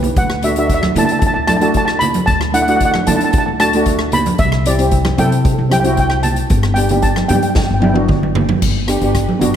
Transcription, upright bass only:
0.16 D2
0.95 D3
1.36 D2
2.28 D2
3.08 D3
3.48 D2
4.39 C2
5.18 C3
5.58 C2
6.50 G1
7.30 G2
7.71 G1
8.62 G1
9.02 G1
9.41 G1

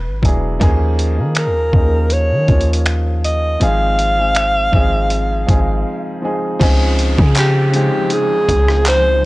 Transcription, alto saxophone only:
Already playing: B4
1.38 A#4
2.13 C#5
3.25 D#5
3.63 F5
7.38 G4
7.76 G4
8.13 G#4
8.88 C5

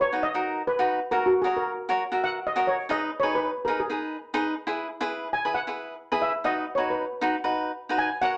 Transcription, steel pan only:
0.01 C#5
0.23 D#5
0.67 B4
1.11 A#4
1.26 F#4
1.42 G#4
1.57 A#4
2.24 F#5
2.47 D#5
2.67 C#5
2.91 D#5
3.20 C#5
3.35 B4
3.65 A#4
3.80 G#4
5.33 G#5
5.54 F#5
6.22 E5
6.45 D#5
6.75 C#5
6.90 B4
7.98 G#5
8.22 F#5

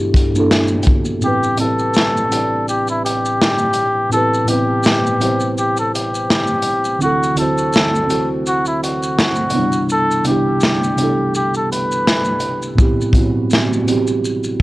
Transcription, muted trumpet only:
1.25 G4
1.61 A4
2.69 G4
2.90 E4
3.05 G4
4.13 A4
4.49 G4
5.58 G4
5.80 A4
5.95 G4
7.02 F#4
7.39 A4
8.48 F#4
8.68 E4
8.84 F#4
9.92 A4
10.28 G4
11.36 G4
11.57 A4
11.72 B4

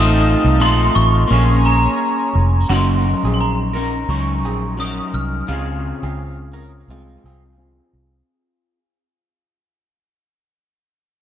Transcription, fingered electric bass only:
Already playing: A1
0.44 C2
0.60 A#1
0.96 A1
1.31 A#1
2.35 F1
2.70 F#1
3.23 A#1
4.09 C#2
4.44 A#1
5.14 C2
5.48 C#2
6.03 C#2
6.88 C2
7.24 C2
7.93 C2

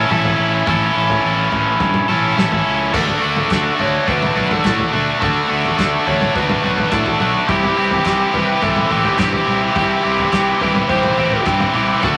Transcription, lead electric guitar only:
2.94 A4
3.81 C#5
4.09 B4
4.52 A4
4.67 A4
5.22 A4
6.08 C#5
6.36 B4
6.92 A4
7.49 G4
8.34 B4
8.63 A4
9.05 G4
9.19 G4
9.76 G4
10.61 B4
10.90 C5
12.04 A4

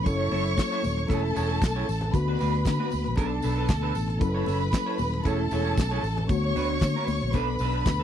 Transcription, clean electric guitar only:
0.05 muted clean electric guitar stroke
0.18 E4 A4 C#5
0.31 E4 A4 C#5
0.45 muted clean electric guitar stroke
0.58 muted clean electric guitar stroke
0.71 E4 A4 C#5
0.83 muted clean electric guitar stroke
0.97 muted clean electric guitar stroke
1.09 E4 G#4 C#5
1.23 muted clean electric guitar stroke
1.35 E4 G#4 C#5
1.49 E4 G#4 C#5
1.62 muted clean electric guitar stroke
1.76 E4 G#4 C#5
1.88 muted clean electric guitar stroke
2.03 muted clean electric guitar stroke
2.15 muted clean electric guitar stroke
2.28 D4 F#4 B4
2.40 D4 F#4 B4
2.54 muted clean electric guitar stroke
2.66 muted clean electric guitar stroke
2.79 D4 F#4 B4
2.91 muted clean electric guitar stroke
3.04 muted clean electric guitar stroke
3.17 D4 A4 B4
3.30 muted clean electric guitar stroke
3.43 D4 A4 B4
3.57 D4 A4 B4
3.82 D4 A4 B4
3.95 muted clean electric guitar stroke
4.08 muted clean electric guitar stroke
4.20 muted clean electric guitar stroke
4.34 E4 A4 C#5
4.46 E4 A4 C#5
4.61 muted clean electric guitar stroke
4.73 muted clean electric guitar stroke
4.86 E4 A4 C#5
5.14 muted clean electric guitar stroke
5.25 E4 G#4 C#5
5.40 muted clean electric guitar stroke
5.52 E4 G#4 C#5
5.65 E4 G#4 C#5
5.91 E4 G#4 C#5
6.04 muted clean electric guitar stroke
6.17 muted clean electric guitar stroke
6.44 muted clean electric guitar stroke
6.56 D4 F#4 B4
6.70 muted clean electric guitar stroke
6.82 muted clean electric guitar stroke
6.96 D4 F#4 B4
7.09 muted clean electric guitar stroke
7.22 muted clean electric guitar stroke
7.35 D4 A4 B4
7.49 muted clean electric guitar stroke
7.60 D4 A4 B4
7.73 D4 A4 B4
7.85 muted clean electric guitar stroke
7.99 A4 B4

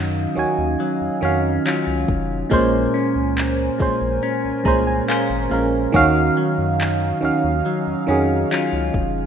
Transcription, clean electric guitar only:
Already playing: D#3 F#3 C#4
0.80 F#3
1.23 C#4
1.66 F#3 C#4 F4
2.51 A#3
2.94 C#4
4.23 C#4
4.66 G#4
5.08 C#4 G#4 C5
5.94 D#3
6.37 F#3
7.66 F#3
8.09 C#4
8.51 F#3 C#4 F4

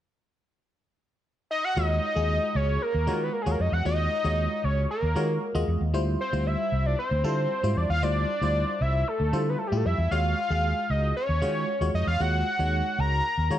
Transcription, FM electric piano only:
1.76 G#3 F4 F#4 C#5
2.15 G#3 F4 F#4 G#4
3.07 G#3 F4 F#4 C#5
3.46 G#3 F4 F#4 C#5
3.85 G#3 F4 F#4 C#5
4.24 G#3 F4 F#4 C#5
5.15 G#3 F4 F#4 C#5
5.55 G#3 F4 F#4 D#5
5.94 G3 E4 F4 C5
6.33 G3 E4 F4 C5
7.24 G3 E4 F4 A4
7.63 G3 E4 F4 C5
8.02 G3 E4 F4 C5
8.42 G3 E4 F4 C5
9.33 G3 E4 F4 C5
9.72 G3 E4 F4 G4
10.11 G#3 F4 F#4 C#5
10.50 G#3 F4 F#4 G#4
11.42 G#3 F4 F#4 C#5
11.81 G#3 F4 F#4 C#5
12.20 G#3 F4 F#4 C#5
12.59 G#3 D#4 F#4 C#5
13.50 G#3 F4 F#4 C#5

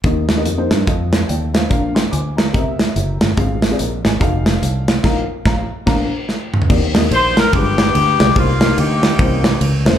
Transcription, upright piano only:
0.04 D#3 A#3 D#4 G4 D#5
0.36 A#3 D#4 G4 D#5
0.57 A#3 D#4 G4 C5
0.86 C4 F4 A4 D#5
1.28 D5 G5
1.54 C5 F5
1.69 A#2 D4 F4 A#4 F5
1.95 G5 C6
2.11 G#5 D6
2.37 F5 A#5
2.52 C3 C4 G4 A#4 D#5
2.59 E5
3.37 G#2 C4 F4 G#4 F5
3.71 C4 F4 G#4 D5
3.79 A#4 D#5
4.05 D#5 G#5
4.20 D#4 F#4 A4 F5
5.03 A#2 D#4 F4 A#4 F5
5.46 F5 A#5
5.86 A#2 D4 F4 A#4 F5 A#5
6.69 D#3 A#3 D#4 G4 D5
6.94 A#3 D#4 G4 D#5
7.52 G2 G#3 F4 G4 G#4
7.59 B4
8.19 G#3 F4 G4 D5
8.35 C3 A#3 D#4 G4 C5
8.60 A#3 D#4 G4 D#5
9.18 C3 E3 A#3 C#4 C5
9.85 A#3 C#4 E4 C5

